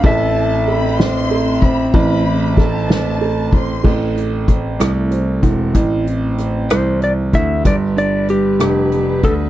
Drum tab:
CC |------|------|x-----|------|
RD |xxxxxx|xxxxxx|------|------|
HH |------|------|-xxxxx|xxxxxx|
SD |---o--|--oo--|---r--|--rr--|
BD |o----o|o-o--o|o-o--o|o----o|

CC |------|
RD |------|
HH |xxxxxx|
SD |---r--|
BD |o----o|